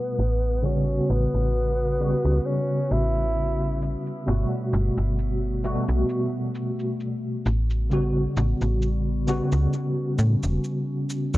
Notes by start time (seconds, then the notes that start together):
Already playing: B2 G3 A3 B3 F#4
0.19 A1 C#3 G3 F#4, cabasa
0.43 cabasa
0.62 C#3 G3 B3 C#4 F#4, cabasa
1.09 A1 B3, cabasa
1.34 A1, cabasa
1.55 cabasa
2.00 C#3 G3 B3 C#4 F#4, cabasa
2.25 C#2, cabasa
2.46 C#4, cabasa
2.91 A1 E4, cabasa
3.16 cabasa
3.37 cabasa
3.82 cabasa
4.07 cabasa
4.26 G1 B2 G3 A3 B3 F#4, cabasa
4.73 G1, cabasa
4.97 G1, cabasa
5.19 cabasa
5.63 B2 G3 A3 F#4, cabasa
5.88 B1, cabasa
6.09 cabasa
6.55 cabasa
6.79 cabasa
7.00 cabasa
7.46 A1 C#3 G3 B3 F#4, cabasa
7.70 cabasa
7.90 C#3 G3 B3 F#4, cabasa
8.37 A1, cabasa
8.61 A1, cabasa
8.82 cabasa
9.27 C#3 G3 B3 C#4 F#4, cabasa
9.52 C#2, cabasa
9.73 cabasa
10.19 A2, cabasa
10.43 E1, cabasa
10.64 cabasa
11.10 cabasa
11.34 E2, cabasa